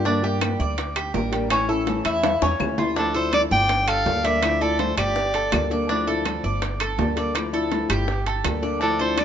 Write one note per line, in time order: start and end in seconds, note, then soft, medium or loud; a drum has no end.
0.00 0.54 G2 medium
0.04 0.22 D3 medium
0.04 0.22 G3 medium
0.04 0.23 A#3 medium
0.04 0.23 D4 medium
0.04 0.22 D4 medium
0.04 0.22 G4 medium
0.04 high bongo medium
0.23 0.40 G3 medium
0.23 0.40 A#3 medium
0.23 0.41 D4 medium
0.23 0.40 G4 medium
0.23 0.59 G4 medium
0.41 0.77 G3 medium
0.41 0.77 A#3 medium
0.41 0.77 D4 medium
0.41 0.77 G4 medium
0.41 high bongo medium
0.41 high timbale medium
0.41 low timbale medium
0.41 claves medium
0.60 1.10 D2 loud
0.60 0.95 D5 medium
0.60 high bongo soft
0.78 muted nylon-string guitar stroke medium
0.78 high bongo medium
0.78 high timbale medium
0.96 1.14 G4 medium
0.96 high bongo soft
0.96 high timbale medium
0.96 claves medium
1.14 2.00 A1 medium
1.14 1.32 G3 soft
1.14 1.32 A#3 soft
1.14 1.31 D4 medium
1.14 1.31 G4 medium
1.14 1.50 A#4 medium
1.14 high bongo soft
1.14 low bongo medium
1.14 low timbale medium
1.32 1.49 G3 medium
1.32 1.50 A#3 medium
1.32 1.50 D4 medium
1.32 1.50 G4 medium
1.32 high bongo soft
1.32 high timbale medium
1.49 1.68 E3 medium
1.49 1.68 A3 medium
1.49 1.68 C#4 medium
1.49 1.67 E4 medium
1.49 high bongo medium
1.49 high timbale medium
1.49 claves medium
1.68 1.86 A3 medium
1.68 1.87 C#4 medium
1.68 1.86 E4 medium
1.68 2.04 A4 medium
1.86 2.22 E3 medium
1.86 2.23 A3 medium
1.86 2.23 C#4 medium
1.86 2.23 E4 medium
1.86 high bongo medium
1.86 high timbale medium
1.86 low timbale medium
2.05 2.39 E2 medium
2.05 2.41 E4 medium
2.05 high bongo soft
2.05 high timbale medium
2.05 claves medium
2.23 muted nylon-string guitar stroke medium
2.23 high bongo medium
2.23 high timbale medium
2.42 2.59 E2 medium
2.42 2.77 C#4 medium
2.42 high bongo loud
2.60 3.46 D2 medium
2.60 2.78 E3 soft
2.60 2.78 A3 soft
2.60 2.78 C#4 soft
2.60 2.77 E4 soft
2.60 low bongo medium
2.60 low timbale medium
2.60 claves medium
2.78 2.96 A3 medium
2.78 2.96 C#4 medium
2.78 2.96 E4 medium
2.78 2.96 F4 medium
2.78 low bongo medium
2.78 low timbale medium
2.96 3.14 D3 medium
2.96 3.14 F3 medium
2.96 3.14 A3 medium
2.96 3.14 D4 medium
2.96 3.13 E4 medium
2.96 3.14 A4 medium
2.96 high bongo medium
3.14 3.31 F3 medium
3.14 3.32 A3 medium
3.14 3.32 D4 medium
3.14 3.32 E4 medium
3.14 3.50 A4 medium
3.14 3.32 C5 medium
3.32 3.69 F3 soft
3.32 3.69 A3 soft
3.32 3.69 D4 medium
3.32 3.42 D5 loud
3.32 high bongo medium
3.32 high timbale medium
3.32 low timbale medium
3.32 claves medium
3.51 4.02 G1 loud
3.51 3.87 D5 medium
3.51 3.90 G5 loud
3.51 high bongo soft
3.69 muted nylon-string guitar stroke medium
3.69 high bongo medium
3.69 high timbale medium
3.88 4.24 A4 medium
3.88 4.27 F5 loud
3.88 high bongo soft
3.88 high timbale medium
3.88 claves medium
4.06 4.92 D2 medium
4.06 4.24 G3 medium
4.06 4.24 A#3 soft
4.06 4.23 D4 soft
4.06 4.23 A4 medium
4.06 high bongo soft
4.06 low bongo medium
4.06 low timbale medium
4.24 4.42 G3 medium
4.24 4.42 A#3 medium
4.24 4.42 D4 medium
4.24 4.42 A4 medium
4.24 4.60 D5 medium
4.24 4.63 E5 loud
4.24 high bongo soft
4.24 high timbale medium
4.42 4.60 D3 medium
4.42 4.60 F3 medium
4.42 4.60 A3 medium
4.42 4.60 D4 medium
4.42 4.59 E4 medium
4.42 high bongo medium
4.42 high timbale medium
4.42 claves medium
4.61 4.78 F3 medium
4.61 4.78 A3 medium
4.61 4.79 D4 medium
4.61 4.78 E4 medium
4.61 4.97 A4 medium
4.61 4.79 D5 medium
4.79 5.15 F3 soft
4.79 5.15 A3 medium
4.79 5.15 D4 medium
4.79 5.16 E4 medium
4.79 4.96 C5 medium
4.79 high bongo medium
4.79 high timbale medium
4.79 low timbale medium
4.98 5.49 G1 medium
4.98 5.33 G4 medium
4.98 5.67 D5 medium
4.98 high bongo soft
4.98 high timbale medium
4.98 claves medium
5.16 muted nylon-string guitar stroke medium
5.16 high bongo medium
5.34 5.70 A4 medium
5.34 high bongo soft
5.34 high timbale medium
5.52 6.38 D2 medium
5.52 5.70 G3 soft
5.52 5.70 A#3 soft
5.52 5.70 D4 soft
5.52 5.69 A4 medium
5.52 high bongo soft
5.52 low bongo medium
5.52 high timbale loud
5.52 low timbale medium
5.52 claves medium
5.70 5.89 G3 medium
5.70 5.89 A#3 medium
5.70 5.88 D4 medium
5.70 5.88 A4 medium
5.70 5.89 D5 medium
5.70 high bongo soft
5.89 6.06 D3 medium
5.89 6.07 F3 medium
5.89 6.07 A3 medium
5.89 6.07 D4 medium
5.89 6.06 D4 medium
5.89 6.06 E4 medium
5.89 high bongo medium
6.07 6.24 F3 medium
6.07 6.25 A3 medium
6.07 6.25 D4 medium
6.07 6.25 E4 medium
6.07 6.43 A4 medium
6.25 6.61 F3 medium
6.25 6.61 A3 soft
6.25 6.62 E4 medium
6.25 high bongo medium
6.25 high timbale medium
6.25 low timbale medium
6.25 claves medium
6.44 6.95 G1 medium
6.44 6.79 D5 medium
6.44 high bongo soft
6.62 muted nylon-string guitar stroke medium
6.62 high bongo medium
6.62 high timbale medium
6.80 7.16 A4 medium
6.80 high bongo soft
6.80 high timbale medium
6.80 claves medium
6.98 7.84 D2 medium
6.98 7.16 G3 soft
6.98 7.16 A#3 medium
6.98 7.16 D4 medium
6.98 7.15 A4 soft
6.98 high bongo soft
6.98 low bongo medium
6.98 low timbale medium
7.16 7.35 G3 medium
7.16 7.35 A#3 medium
7.16 7.34 D4 medium
7.16 7.34 A4 medium
7.16 7.52 D5 medium
7.16 high bongo soft
7.16 high timbale medium
7.34 7.52 D3 medium
7.34 7.53 F3 medium
7.34 7.53 A3 medium
7.34 7.52 D4 medium
7.34 7.52 E4 medium
7.34 high bongo medium
7.34 high timbale medium
7.34 claves medium
7.53 7.70 F3 medium
7.53 7.71 A3 medium
7.53 7.71 D4 medium
7.53 7.71 E4 medium
7.53 7.89 A4 medium
7.71 8.07 F3 soft
7.71 8.07 A3 medium
7.71 8.07 D4 medium
7.71 8.08 E4 medium
7.71 high bongo medium
7.71 high timbale medium
7.71 low timbale medium
7.89 8.41 G1 medium
7.89 8.25 G4 medium
7.89 high bongo soft
7.89 high timbale medium
7.89 claves medium
8.07 muted nylon-string guitar stroke medium
8.07 high bongo medium
8.27 8.62 A4 medium
8.27 high bongo soft
8.27 high timbale medium
8.44 9.25 D2 medium
8.44 8.62 G3 soft
8.44 8.62 A#3 soft
8.44 8.62 D4 soft
8.44 8.61 A4 soft
8.44 high bongo soft
8.44 low bongo medium
8.44 high timbale medium
8.44 low timbale medium
8.44 claves medium
8.62 8.81 G3 medium
8.62 8.81 A#3 medium
8.62 8.80 D4 medium
8.62 8.80 A4 medium
8.62 8.80 D5 medium
8.62 high bongo soft
8.81 8.98 D3 medium
8.81 8.99 F3 medium
8.81 8.99 A3 medium
8.81 8.99 D4 medium
8.81 8.98 E4 medium
8.81 8.99 A4 medium
8.81 high bongo medium
8.99 9.17 F3 medium
8.99 9.17 A3 medium
8.99 9.17 D4 medium
8.99 9.17 E4 medium
8.99 9.25 A4 medium
8.99 9.20 C5 medium
9.17 9.25 F3 soft
9.17 9.25 A3 medium
9.17 9.25 D4 medium
9.17 9.25 E4 medium
9.17 9.25 D5 medium
9.17 high bongo medium
9.17 high timbale medium
9.17 low timbale medium
9.17 claves medium